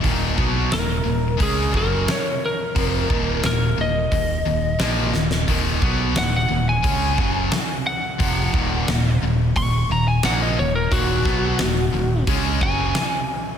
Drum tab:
HH |o---o---o---o---|o---o---o---o---|o---o---o---o---|o---o---o---o---|
SD |----o-------o---|----o-------o-oo|----o-------o---|----o-------o---|
BD |o-o-----o-o-----|o-o-----o-------|o-o-----o-o-----|o-o-----o-------|

HH |o---o---o---o---|
SD |--o-o-------o---|
BD |o-o-----o-o-----|